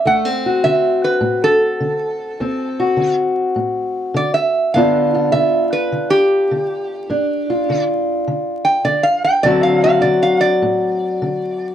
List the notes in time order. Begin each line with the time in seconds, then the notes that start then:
0.05 D2 A3 F#5
0.25 C4
0.46 F#4
0.64 D3 E5
1.04 B4
1.21 A2
1.44 A4
1.80 D3
2.40 D2 C4
2.80 F#4
2.97 D3
3.56 A2
4.14 D3 D5
4.34 E5
4.74 G2 D3 B3 D4 F4 F5
5.14 F4
5.32 D3 E5
5.73 B4
5.92 D3
6.10 G4
6.51 D3
7.10 G2 D4
7.50 F4
7.70 D3
8.28 D3
8.65 G5
8.85 D3 D5
9.03 F5
9.24 G5
9.43 D2 D3 F#3 C4 F#4 D5
9.63 F5
9.84 F#4 F5
10.02 D3 D5
10.23 F5
10.41 D5
10.62 A2
11.22 D3